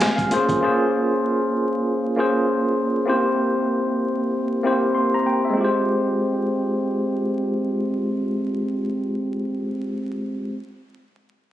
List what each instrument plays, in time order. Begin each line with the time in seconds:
Already playing: tine electric piano G#3 C4 F4 G4 B4 C5 F5
0.00 tine electric piano G#5, snare, closed hi-hat
0.16 tine electric piano F5, kick, closed hi-hat
0.30 tine electric piano A#3 C#4 F4 G#4 C5, closed hi-hat
0.49 kick, closed hi-hat
0.61 tine electric piano A#3 C#4 F4 G#4 C5
2.16 tine electric piano A#3 C#4 F4 G#4 C5
3.06 tine electric piano A#3 C4 E4 G4 C5
4.63 tine electric piano A#3 C4 E4 G4 C5
4.95 tine electric piano C6
5.14 tine electric piano A#5
5.26 tine electric piano G5
5.45 tine electric piano E5
5.50 tine electric piano G#3 C4
5.57 tine electric piano F4 G4
5.65 tine electric piano C5